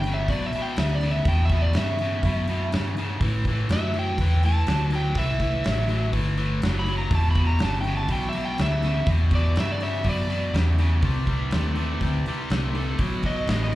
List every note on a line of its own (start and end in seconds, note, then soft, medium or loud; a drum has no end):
0.00 0.28 G1 medium
0.00 0.13 G5 medium
0.00 open hi-hat medium
0.07 0.27 E2 medium
0.07 0.28 C#3 medium
0.14 0.29 E5 medium
0.28 0.51 B1 medium
0.28 0.51 E2 medium
0.28 0.51 B2 loud
0.28 0.45 D5 medium
0.28 kick medium
0.28 open hi-hat medium
0.46 0.61 E5 medium
0.53 0.76 E2 medium
0.53 0.77 B2 medium
0.53 muted fingered electric bass stroke soft
0.53 open hi-hat medium
0.62 0.77 G5 medium
0.76 1.25 D2 medium
0.76 1.00 E2 medium
0.76 1.00 C#3 medium
0.76 0.94 E5 medium
0.76 snare loud
0.76 open hi-hat medium
0.95 1.10 D5 medium
1.01 1.24 E2 medium
1.01 1.24 C#3 medium
1.01 snare soft
1.01 open hi-hat medium
1.11 1.26 E5 medium
1.25 1.73 E2 medium
1.25 1.49 E2 medium
1.25 1.49 B2 medium
1.25 1.43 G5 medium
1.25 kick loud
1.25 open hi-hat medium
1.45 1.60 E5 medium
1.49 1.73 E2 medium
1.49 1.73 B2 medium
1.49 kick medium
1.49 open hi-hat medium
1.62 1.76 D5 medium
1.73 1.97 E2 medium
1.73 2.23 G2 medium
1.73 1.98 C#3 medium
1.73 2.71 E5 medium
1.73 snare loud
1.73 open hi-hat medium
1.99 2.22 E2 medium
1.99 2.23 C#3 medium
1.99 open hi-hat medium
2.23 2.46 E2 medium
2.23 2.71 F#2 medium
2.23 2.46 B2 medium
2.23 kick medium
2.23 open hi-hat medium
2.47 2.70 E2 medium
2.47 2.71 B2 medium
2.47 open hi-hat soft
2.72 2.95 E2 medium
2.72 3.20 G2 medium
2.72 2.95 C#3 medium
2.72 snare loud
2.72 open hi-hat medium
2.97 3.19 E2 medium
2.97 3.20 C#3 medium
2.97 open hi-hat medium
3.21 3.68 A2 medium
3.21 3.44 A2 medium
3.21 3.44 E3 medium
3.21 kick loud
3.21 open hi-hat medium
3.45 3.68 A2 medium
3.45 3.69 E3 medium
3.45 kick medium
3.45 open hi-hat soft
3.69 4.17 F#2 medium
3.69 3.93 A2 medium
3.69 3.93 F#3 medium
3.69 3.95 E5 loud
3.69 snare loud
3.69 open hi-hat medium
3.94 4.17 A2 medium
3.94 4.17 F#3 medium
3.94 open hi-hat soft
3.99 4.44 G5 medium
4.18 4.66 E2 medium
4.18 4.42 A2 medium
4.18 4.42 E3 medium
4.18 kick medium
4.18 open hi-hat medium
4.43 4.65 A2 medium
4.43 4.66 E3 medium
4.43 4.92 A5 medium
4.43 open hi-hat medium
4.67 5.14 D2 medium
4.67 4.90 A2 medium
4.67 4.90 F#3 medium
4.67 snare loud
4.67 open hi-hat medium
4.90 5.14 A2 medium
4.90 5.14 F#3 medium
4.90 snare soft
4.90 open hi-hat medium
4.95 5.17 G5 medium
5.15 5.63 C2 medium
5.15 5.39 A2 medium
5.15 5.39 E3 medium
5.15 6.12 E5 loud
5.15 kick loud
5.15 open hi-hat medium
5.40 5.63 A2 medium
5.40 5.63 E3 medium
5.40 kick medium
5.40 open hi-hat medium
5.64 6.12 A1 medium
5.64 5.88 A2 medium
5.64 5.87 F#3 medium
5.64 snare loud
5.64 open hi-hat medium
5.89 6.12 A2 medium
5.89 6.12 F#3 medium
5.89 open hi-hat medium
6.13 6.61 G1 medium
6.13 6.36 A2 medium
6.13 6.36 E3 medium
6.13 kick medium
6.13 open hi-hat medium
6.38 6.60 A2 medium
6.38 6.60 E3 medium
6.38 open hi-hat soft
6.62 7.10 F#1 medium
6.62 6.86 A2 medium
6.62 6.86 F#3 medium
6.62 snare loud
6.62 open hi-hat medium
6.79 6.95 B5 medium
6.86 7.10 A2 medium
6.86 7.10 F#3 medium
6.86 open hi-hat medium
6.98 7.13 A#5 medium
7.11 7.59 E1 medium
7.11 7.34 E2 medium
7.11 7.35 B2 medium
7.11 11.00 E4 medium
7.11 11.00 F#4 medium
7.11 11.00 G4 medium
7.11 11.00 D5 medium
7.11 kick loud
7.11 open hi-hat medium
7.15 7.29 A5 medium
7.31 7.45 B5 medium
7.35 7.58 E2 medium
7.35 7.58 B2 medium
7.35 kick medium
7.35 open hi-hat soft
7.47 7.62 A#5 medium
7.59 8.08 G1 medium
7.59 7.83 E2 medium
7.59 7.83 C#3 medium
7.59 snare loud
7.59 open hi-hat medium
7.64 7.78 A5 medium
7.81 7.95 G5 medium
7.81 open hi-hat soft
7.86 8.08 E2 medium
7.86 8.08 C#3 medium
7.97 8.11 A5 medium
8.08 8.57 B1 medium
8.08 8.32 E2 medium
8.08 8.32 B2 medium
8.08 kick medium
8.08 open hi-hat medium
8.12 8.27 G5 medium
8.29 8.43 E5 medium
8.29 open hi-hat medium
8.35 8.57 E2 medium
8.35 8.57 B2 medium
8.45 8.60 G5 medium
8.58 9.06 D2 medium
8.58 8.81 E2 medium
8.58 8.82 C#3 medium
8.58 9.08 E5 loud
8.58 snare loud
8.58 open hi-hat medium
8.82 9.06 E2 medium
8.82 9.06 C#3 medium
8.82 snare soft
8.82 open hi-hat medium
9.06 9.55 E2 medium
9.06 9.30 E2 medium
9.06 9.31 B2 medium
9.06 kick loud
9.06 open hi-hat medium
9.31 9.54 E2 medium
9.31 9.55 B2 medium
9.31 9.58 D5 medium
9.31 kick medium
9.31 open hi-hat medium
9.56 9.79 E2 medium
9.56 10.04 G2 medium
9.56 9.79 C#3 medium
9.56 9.70 E5 medium
9.56 snare loud
9.56 open hi-hat medium
9.72 9.82 D5 medium
9.80 10.04 E2 medium
9.80 10.04 C#3 medium
9.80 10.06 E5 loud
9.80 open hi-hat medium
10.04 10.28 E2 medium
10.04 10.53 F#2 medium
10.04 10.28 B2 medium
10.04 kick medium
10.04 open hi-hat medium
10.09 10.55 D5 loud
10.29 10.52 E2 medium
10.29 10.52 B2 medium
10.29 open hi-hat soft
10.54 11.02 E2 medium
10.54 10.77 E2 medium
10.54 10.77 C#3 medium
10.54 snare loud
10.54 open hi-hat medium
10.78 11.01 E2 medium
10.78 11.02 C#3 medium
10.78 snare soft
10.78 open hi-hat medium
11.02 11.51 C2 medium
11.02 11.26 C3 medium
11.02 12.99 G3 medium
11.02 11.27 G3 medium
11.02 12.98 C4 medium
11.02 12.97 E4 medium
11.02 12.99 B4 medium
11.02 kick loud
11.02 open hi-hat medium
11.27 11.50 C3 medium
11.27 11.51 G3 medium
11.27 kick medium
11.27 open hi-hat medium
11.51 12.00 D#2 medium
11.51 11.75 C3 medium
11.51 11.75 A3 medium
11.51 snare loud
11.51 open hi-hat medium
11.76 11.99 C3 medium
11.76 12.00 A3 medium
11.76 open hi-hat soft
12.01 12.24 D2 medium
12.01 12.24 C3 medium
12.01 12.25 G3 medium
12.01 kick medium
12.01 open hi-hat medium
12.26 12.49 C3 medium
12.26 12.50 G3 medium
12.26 muted fingered electric bass stroke soft
12.26 open hi-hat medium
12.50 12.99 C2 medium
12.50 12.73 C3 medium
12.50 12.74 A3 medium
12.50 snare loud
12.50 open hi-hat medium
12.75 12.98 C3 medium
12.75 12.98 A3 medium
12.75 open hi-hat soft
12.98 13.48 B1 medium
12.98 13.22 B2 medium
12.98 13.22 F#3 medium
12.98 13.17 A#3 medium
12.98 13.16 E4 medium
12.98 13.16 G4 medium
12.98 13.16 C5 medium
12.98 kick loud
12.98 open hi-hat medium
13.15 13.75 A3 medium
13.15 13.75 D#4 medium
13.15 13.75 F#4 medium
13.15 13.75 B4 medium
13.23 13.47 B2 medium
13.23 13.47 F#3 medium
13.23 13.50 D#5 loud
13.23 kick medium
13.23 open hi-hat medium
13.47 13.75 A1 medium
13.47 13.71 B2 medium
13.47 13.72 G#3 medium
13.47 13.62 D#5 medium
13.47 snare loud
13.47 open hi-hat medium
13.63 13.74 D#5 medium